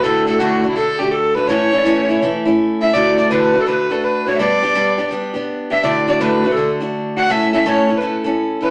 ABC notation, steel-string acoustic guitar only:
X:1
M:4/4
L:1/8
Q:"Swing" 1/4=165
K:D
V:1 name="Steel-string acoustic guitar"
[D,,A,,D,A,DF] [D,,A,,D,A,DF] [D,,A,,D,A,DF] [D,A,DF] [D,A,DF] [D,A,DF]2 [D,A,DF] | [A,,E,A,CE] [A,,E,A,CE] [A,,E,A,CE] [A,CE] [E,A,CE] [A,CE]2 [A,CE] | [A,,D,A,DF] [A,,D,A,DF] [A,,D,A,DF] [A,DF] [D,A,DF] [A,DF]2 [A,DF] | [G,B,DG] [G,B,DG] [G,B,DG] [B,DG] [G,B,DG] [B,DG]2 [B,DG] |
[D,,A,,D,A,DF] [D,,A,,D,A,DF] [D,,A,,D,A,DF] [D,A,DF] [D,A,DF] [D,A,DF]2 [D,A,DF] | [A,,A,CEA] [A,,A,CEA] [A,,A,CEA] [CEA] [A,CEA] [CEA]2 [CEA] |]